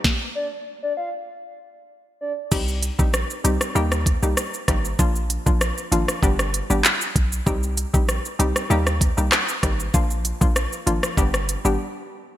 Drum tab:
CC |----------------|x---------------|----------------|----------------|
HH |----------------|--x---x---x---x-|--x---x---x---x-|--x---x---x---x-|
SH |----------------|xxxxxxxxxxxxxxxx|xxxxxxxxxxxxxxxx|xxxxxxxxxxxxxxxx|
CP |----------------|----------------|------------x---|------------x---|
SD |o---------------|----r--r-r--r-r-|----r--r-r------|----r--r-r--r-r-|
BD |o---------------|o--o------o---o-|o--o----o-----o-|o--o------o---o-|

CC |----------------|
HH |--x---x---x-----|
SH |xxxxxxxxxxxx----|
CP |----------------|
SD |----r--r-r------|
BD |o--o----o-------|